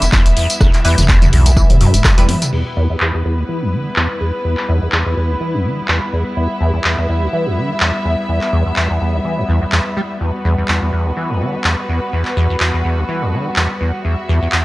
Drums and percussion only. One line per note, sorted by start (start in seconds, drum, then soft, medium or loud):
0.02 closed hi-hat medium
0.02 tambourine medium
0.12 kick loud
0.12 clap loud
0.12 tambourine medium
0.26 closed hi-hat medium
0.26 tambourine soft
0.37 open hi-hat medium
0.50 closed hi-hat medium
0.50 tambourine medium
0.61 kick loud
0.61 cross-stick medium
0.61 tambourine medium
0.73 clap soft
0.73 closed hi-hat soft
0.73 tambourine soft
0.85 open hi-hat loud
0.98 closed hi-hat medium
0.98 mid tom medium
0.98 tambourine medium
1.08 kick loud
1.08 clap loud
1.08 tambourine medium
1.22 closed hi-hat soft
1.22 mid tom medium
1.22 tambourine soft
1.33 open hi-hat medium
1.46 closed hi-hat medium
1.46 tambourine medium
1.57 kick loud
1.57 tambourine medium
1.70 closed hi-hat medium
1.70 mid tom medium
1.70 tambourine soft
1.81 open hi-hat loud
1.94 closed hi-hat medium
1.94 tambourine medium
2.04 kick loud
2.04 cross-stick medium
2.04 clap loud
2.04 tambourine medium
2.18 closed hi-hat medium
2.18 tambourine soft
2.29 open hi-hat medium
2.29 high tom medium
2.42 closed hi-hat medium
2.42 mid tom medium
2.42 tambourine medium
2.53 crash medium
3.00 clap loud
3.96 clap loud
4.57 clap soft
4.92 clap loud
5.88 clap loud
6.84 clap loud
7.80 clap loud
8.41 clap soft
8.76 clap loud
9.72 clap loud
10.68 clap loud
11.64 clap loud
12.25 clap soft
12.60 clap loud
13.56 clap loud
14.52 clap loud